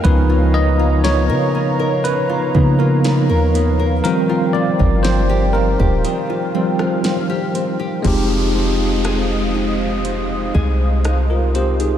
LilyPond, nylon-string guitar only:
\new Staff \with { instrumentName = "Nylon-string guitar" } { \time 4/4 \key f \dorian \tempo 4 = 60 des16 f'16 ces'16 f'16 ces'16 bes'16 ces'16 bes'16 des16 f'16 ces'16 f'16 ces'16 bes'16 ces'16 bes'16 | ees16 f'16 c'16 f'16 c'16 g'16 c'16 g'16 ees16 f'16 c'16 f'16 c'16 g'16 c'16 g'16 | f8 c'8 aes'8 ees'8 c'8 aes'8 ees'8 c'8 | }